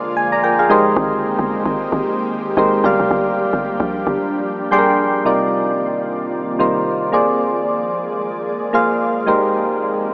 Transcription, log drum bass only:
0.97 G#1
1.39 G1
1.66 G#1
1.92 G#1
2.57 G#1
2.84 G1
3.00 F1
3.11 G1
3.53 G1
3.80 A#1
4.07 G1

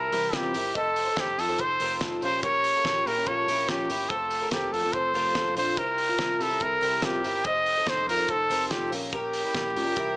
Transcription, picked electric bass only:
0.12 C2
0.34 C2
0.54 G1
0.76 F1
1.17 F1
1.38 F2
1.59 F1
1.80 F1
2.01 F1
2.22 A#1
2.85 A#1
3.06 A#2
3.27 A#1
3.47 A#1
3.69 A#1
3.89 G1
4.10 F1
4.51 F1
4.73 F2
4.94 F1
5.13 F1
5.35 F1
5.55 A#1
5.77 C2
6.19 C2
6.40 C3
6.61 C2
6.81 C2
7.03 C2
7.24 G1
7.45 F1
7.87 F1
8.07 F2
8.29 F1
8.50 F1
8.71 F1
8.91 A#1
9.55 A#1
9.76 A#2
9.97 C2

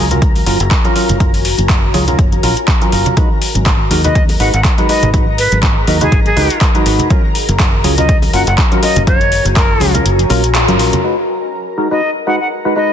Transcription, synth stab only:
0.11 F#3 C#4 F4 A#4
0.47 F#3 C#4 F4 A#4
0.85 F#3 C#4 F4 A#4
0.96 F#3 C#4 F4 A#4
1.20 F#3 C#4 F4 A#4
1.94 F#3 C#4 F4 G#4
2.08 F#3 C#4 F4 A#4
2.43 F#3 C#4 F4 A#4
2.82 F#3 C#4 F4 A#4
2.92 F#3 C#4 F4 A#4
3.17 G#3 D#4 F#4 B4
3.91 G#3 D#4 F#4 A#4
4.04 G#3 D#4 F#4 B4
4.40 G#3 D#4 F#4 B4
4.78 G#3 D#4 F#4 B4
4.89 G#3 D#4 F#4 B4
5.14 G#3 D#4 F#4 B4
5.88 G#3 D#4 F#4 A#4
6.01 G#3 D#4 F#4 B4
6.37 G#3 D#4 F#4 B4
6.75 G#3 D#4 F#4 B4
6.86 G#3 D#4 F#4 B4
7.10 F#3 C#4 F4 A#4
7.84 F#3 C#4 F4 G#4
7.98 F#3 C#4 F4 A#4
8.34 F#3 C#4 F4 A#4
8.72 F#3 C#4 F4 A#4
8.83 F#3 C#4 F4 A#4
9.07 F#3 C#4 F4 A#4
9.81 F#3 C#4 F4 G#4
9.95 F#3 C#4 F4 A#4
10.30 F#3 C#4 F4 A#4
10.68 F#3 C#4 F4 A#4
10.79 F#3 C#4 F4 A#4
11.04 G#3 D#4 F#4 B4
11.78 G#3 D#4 F#4 A#4
11.91 G#3 D#4 F#4 B4
12.27 G#3 D#4 F#4 B4
12.65 G#3 D#4 F#4 B4
12.76 G#3 D#4 F#4 B4

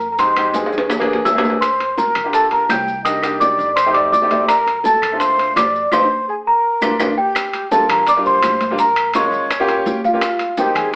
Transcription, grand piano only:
0.19 G#3 C4 D#4 G4
0.36 G#3 C4 D#4 G4
0.99 A#3 B3 D4 G#4
1.35 A#3 B3 D4 G#4
1.45 A#3 B3 D4 G#4
2.24 A#3 D4 F4 G4
3.05 A#3 D4 D#4 G4
3.22 A#3 D4 D#4 G4
3.86 A3 C4 D#4 G4
4.22 A3 C4 D#4 G4
4.31 A3 C4 D#4 G4
5.12 A3 C4 D4 F4
5.93 C4 D#4 F4
6.82 A#3 D4 F4
7.00 A#3 D4 F4
7.71 G3 A#3 D4 F4
8.17 G3 A#3 D4 F4
8.71 G3 A#3 D4 F4
9.15 G#3 A#3 C#4 F4
9.60 A#3 C#4 F4 G4
10.13 A#3 C#4 F4 G4
10.59 A#3 C4 D#4 G4

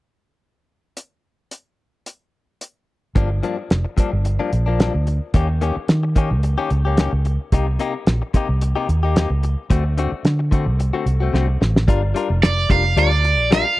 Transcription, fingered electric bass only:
3.16 G1
3.71 F1
3.98 muted fingered electric bass stroke
4.13 G1
4.53 A#1
4.95 D2
5.34 D#2
5.77 muted fingered electric bass stroke
5.89 D#3
6.31 C#2
6.71 C#2
7.13 C#2
7.53 C2
8.07 A#1
8.34 muted fingered electric bass stroke
8.49 C2
8.89 D#2
9.30 C#2
9.71 D2
10.12 muted fingered electric bass stroke
10.25 D3
10.66 C2
11.06 C2
11.34 C2
11.61 A1
11.88 G1
12.30 F1
12.70 F1
12.97 D2
13.39 A#1

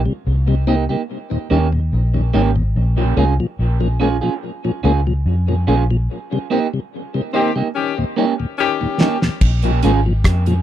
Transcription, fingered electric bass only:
0.27 C2
1.51 D#2
1.93 A#1
2.35 G#1
2.76 A#1
3.17 C2
3.59 A#1
4.84 C#2
5.26 F2
5.68 A#1
9.42 A#1
9.84 G#1
10.25 F2

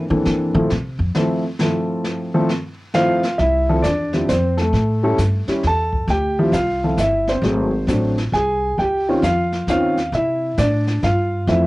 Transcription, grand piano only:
0.10 E3 A#3 C4 D4 A4
0.55 F3 A3 C4 E4 A4
1.15 F3 A3 C4 E4 A4
1.61 F3 A3 C4 E4 A4
2.34 F3 A3 C4 E4 A4
2.94 F3 A3 C4 E4 F4 C5 F5
3.38 E4 E5
3.69 F3 C4 E4 A4
3.83 D5
3.87 D4
4.14 F3 C4 E4 G4
4.29 C5
4.33 C4
4.57 A4
4.62 A3
5.03 G3 C#4 E4 A4
5.48 G3 C#4 E4 G4
5.66 A4 A5
6.10 G4 G5
6.39 F3 C4 E4 G4
6.53 F4 F5
6.84 F3 C4 E4 A4
7.00 E4 E5
7.29 C4 C5
7.44 F#3 A3 C4 G#4
7.88 F#3 A3 C4 D4
8.34 G#4 G#5
8.79 G4 G5
9.09 D#3 C4 C#4 F4
9.24 F4 F5
9.69 D#3 C4 C#4 F4 F5
10.15 E4 E5
10.58 D4 D5
11.04 F4 F5
11.48 E3 A3 C4 E4 F4 E5

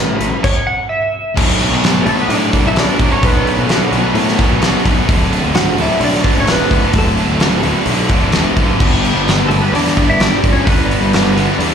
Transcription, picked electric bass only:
Already playing: A2
0.20 A1
1.37 B1
1.71 B1
2.05 B1
2.28 A2
2.64 B1
2.99 B1
3.23 B1
3.58 B1
3.91 B1
4.14 A2
4.50 B1
4.85 B1
5.08 D1
5.43 D1
5.78 D1
6.01 B1
6.36 D1
6.71 D1
6.93 D1
7.28 D1
7.62 D1
7.86 B1
8.09 D1
8.32 E1
8.57 F#1
8.80 G1
9.14 G1
9.49 G1
9.72 E2
10.07 G1
10.43 G1
10.67 G1
11.01 G1
11.36 G1
11.59 E2

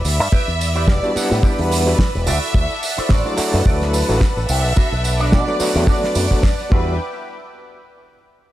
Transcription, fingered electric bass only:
0.05 D2
0.20 G2
0.48 E2
0.88 E1
1.16 muted fingered electric bass stroke
1.31 A2
1.59 E2
2.15 E1
2.27 D2
2.54 D2
2.98 muted fingered electric bass stroke
3.10 A1
3.38 muted fingered electric bass stroke
3.54 F#2
3.66 D2
4.09 A1
4.37 A1
4.49 C2
4.65 B1
4.92 B1
5.33 B2
5.60 muted fingered electric bass stroke
5.75 E2
6.16 F#2
6.72 E2

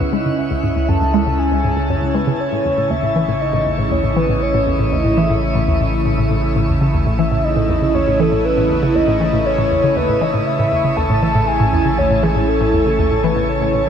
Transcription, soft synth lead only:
Already playing: B4
0.13 D#5
0.38 E5
0.89 A5
1.39 G#5
1.90 C#5
2.15 B4
2.40 C#5
2.91 E5
3.41 D#5
3.92 C#5
4.17 B4
4.42 C#5
4.92 D#5
5.18 E5
7.19 E5
7.44 D#5
7.95 C#5
8.20 A4
8.45 B4
8.96 D#5
9.46 C#5
9.96 B4
10.22 D#5
10.47 E5
10.97 A5
11.47 G#5
11.98 C#5
12.23 G#4
12.48 A4
13.24 B4
13.49 C#5

